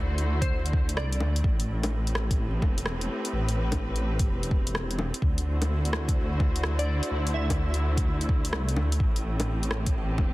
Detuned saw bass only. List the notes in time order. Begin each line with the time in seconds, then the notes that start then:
Already playing: D2
0.97 C2
1.20 D2
1.44 A1
2.62 E1
3.33 A1
4.27 E1
5.22 D2
7.11 D2
8.52 C2
8.76 D2
9.00 A1
10.18 E1